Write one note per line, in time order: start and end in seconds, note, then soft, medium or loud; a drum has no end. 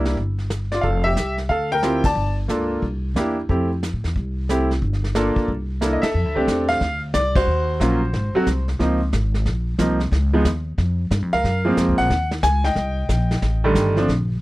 0.00 0.14 C2 medium
0.00 0.15 G3 medium
0.00 0.15 A#3 medium
0.00 0.15 D4 medium
0.00 0.15 E4 medium
0.05 snare medium
0.17 0.80 G1 medium
0.17 brush sweep soft
0.17 kick soft
0.38 snare soft
0.50 snare medium
0.50 hi-hat pedal soft
0.72 0.84 F4 medium
0.72 0.84 D5 medium
0.72 snare soft
0.81 1.14 F1 medium
0.81 1.03 A4 medium
0.81 1.04 F5 medium
0.81 brush sweep soft
0.81 kick soft
1.04 1.36 G4 medium
1.04 1.35 E5 medium
1.16 1.47 C2 medium
1.16 snare medium
1.16 hi-hat pedal medium
1.38 snare soft
1.49 2.12 D2 medium
1.49 1.70 A4 medium
1.49 1.69 F5 medium
1.49 brush sweep soft
1.49 kick soft
1.72 2.03 A#4 medium
1.72 2.06 G5 loud
1.82 2.02 C4 medium
1.82 2.02 E4 medium
1.82 2.02 F4 medium
1.82 2.02 G4 medium
1.82 snare medium
1.82 hi-hat pedal soft
2.04 2.36 D5 medium
2.04 2.36 A5 medium
2.04 kick medium
2.04 ride medium
2.15 2.47 G1 medium
2.15 brush sweep soft
2.48 2.79 C#2 medium
2.48 2.82 A#3 soft
2.48 2.83 D4 soft
2.48 2.83 F4 soft
2.48 2.83 A4 medium
2.48 snare medium
2.48 hi-hat pedal medium
2.82 3.13 C2 medium
2.82 brush sweep soft
2.82 kick soft
3.14 3.46 E2 medium
3.14 3.35 A#3 medium
3.14 3.35 D4 soft
3.14 3.35 E4 medium
3.14 3.36 G4 medium
3.14 snare medium
3.14 hi-hat pedal medium
3.49 3.90 F2 medium
3.49 3.68 A3 medium
3.49 3.68 C4 soft
3.49 3.69 E4 soft
3.49 3.69 G4 medium
3.49 brush sweep soft
3.49 kick soft
3.83 snare medium
3.83 hi-hat pedal medium
3.93 4.04 A2 medium
4.04 4.15 E2 medium
4.04 snare soft
4.16 4.79 C2 medium
4.16 brush sweep soft
4.16 kick soft
4.49 4.68 A3 medium
4.49 4.68 C4 medium
4.49 4.69 E4 medium
4.49 4.69 G4 medium
4.49 snare medium
4.49 hi-hat pedal medium
4.71 snare soft
4.82 5.32 G1 medium
4.82 brush sweep soft
4.82 kick soft
4.93 snare soft
5.04 snare soft
5.15 5.48 A#3 medium
5.15 5.48 D4 medium
5.15 5.49 F4 medium
5.15 5.49 A4 medium
5.15 snare medium
5.15 hi-hat pedal medium
5.36 muted upright bass stroke soft
5.36 kick medium
5.48 5.99 C2 medium
5.48 brush sweep soft
5.48 kick soft
5.81 6.00 A#3 medium
5.81 6.00 D4 soft
5.81 6.01 E4 soft
5.81 6.01 A4 medium
5.81 snare medium
5.81 hi-hat pedal medium
5.93 6.02 D#5 medium
6.02 6.66 A4 medium
6.02 6.44 E5 medium
6.02 muted upright bass stroke soft
6.02 snare medium
6.02 ride medium
6.14 6.25 F2 medium
6.14 brush sweep medium
6.25 6.35 D2 soft
6.35 6.47 C2 medium
6.35 6.78 A3 medium
6.35 6.78 C4 medium
6.35 6.79 D4 medium
6.35 6.79 G4 medium
6.47 6.80 E2 medium
6.47 kick soft
6.47 snare medium
6.47 hi-hat pedal soft
6.69 7.00 F5 loud
6.69 snare soft
6.81 7.13 D2 medium
6.81 brush sweep soft
6.81 kick soft
6.81 snare soft
7.14 7.46 C2 medium
7.14 7.36 D5 loud
7.14 kick soft
7.14 snare medium
7.14 hi-hat pedal medium
7.35 8.35 F#4 medium
7.35 8.64 C5 medium
7.35 kick medium
7.35 crash medium
7.47 7.79 D#2 medium
7.47 brush sweep medium
7.80 8.12 A#1 medium
7.80 7.99 F#3 medium
7.80 8.00 A#3 medium
7.80 8.00 C#4 medium
7.80 8.00 F4 medium
7.80 kick soft
7.80 snare medium
7.80 hi-hat pedal medium
8.13 8.33 G#1 medium
8.13 brush sweep soft
8.13 kick soft
8.13 snare soft
8.35 8.45 F#3 medium
8.35 8.46 A3 medium
8.35 8.46 C4 medium
8.35 8.46 F#4 medium
8.35 muted upright bass stroke soft
8.46 8.79 C2 medium
8.46 kick soft
8.46 snare medium
8.46 hi-hat pedal medium
8.68 snare soft
8.79 9.12 C#2 medium
8.79 8.99 F3 medium
8.79 8.99 A#3 medium
8.79 8.99 C4 medium
8.79 8.99 D#4 medium
8.79 brush sweep soft
8.79 kick soft
8.79 snare soft
9.13 9.45 G#1 medium
9.13 kick soft
9.13 snare medium
9.13 hi-hat pedal medium
9.34 snare soft
9.45 9.78 A#1 medium
9.45 brush sweep soft
9.45 kick soft
9.45 snare soft
9.79 10.11 C2 medium
9.79 9.98 F3 medium
9.79 9.98 A#3 medium
9.79 9.98 C4 medium
9.79 9.98 D#4 medium
9.79 kick soft
9.79 snare medium
9.79 hi-hat pedal medium
10.00 snare soft
10.11 10.44 C#2 medium
10.11 brush sweep medium
10.11 kick soft
10.11 snare soft
10.33 10.44 F3 medium
10.33 10.44 G#3 medium
10.33 10.44 B3 medium
10.33 10.45 D#4 medium
10.45 10.77 D#2 medium
10.45 kick soft
10.45 snare medium
10.45 hi-hat pedal medium
10.78 11.10 F2 medium
10.78 brush sweep soft
10.78 kick soft
10.78 snare soft
11.11 11.22 G2 medium
11.11 kick soft
11.11 snare medium
11.11 hi-hat pedal medium
11.22 11.33 F2 medium
11.33 11.43 C#2 medium
11.33 11.95 A#4 medium
11.33 11.74 F5 medium
11.33 snare soft
11.44 11.76 F#2 medium
11.44 brush sweep medium
11.44 kick soft
11.44 snare soft
11.65 12.08 F3 medium
11.65 12.08 G#3 medium
11.65 12.08 A#3 medium
11.65 12.08 C4 medium
11.77 11.90 F2 medium
11.77 kick soft
11.77 snare medium
11.77 hi-hat pedal medium
11.88 11.98 C#2 medium
11.98 12.09 A#1 medium
11.98 12.29 F#5 loud
11.98 snare soft
12.10 12.42 D#2 medium
12.10 brush sweep medium
12.10 kick soft
12.10 snare soft
12.31 snare medium
12.43 12.75 C#2 medium
12.43 12.63 G#5 loud
12.43 kick soft
12.43 snare medium
12.43 hi-hat pedal medium
12.64 13.94 D#5 medium
12.64 13.93 G5 medium
12.64 snare soft
12.75 13.08 C2 medium
12.75 brush sweep soft
12.75 kick soft
12.75 snare soft
13.09 13.41 A#1 medium
13.09 kick soft
13.09 snare medium
13.09 hi-hat pedal medium
13.31 snare soft
13.42 13.74 A1 medium
13.42 brush sweep medium
13.42 kick soft
13.42 snare soft
13.64 13.96 D3 medium
13.64 13.95 D#3 medium
13.64 13.95 G3 medium
13.64 13.95 A3 medium
13.75 14.08 G1 loud
13.75 kick soft
13.75 snare medium
13.75 hi-hat pedal medium
13.97 14.07 F3 medium
13.97 14.08 A3 medium
13.97 14.08 C4 medium
13.97 14.08 D4 medium
13.97 snare soft
14.08 14.41 A#1 medium
14.08 brush sweep soft
14.08 kick soft
14.08 snare soft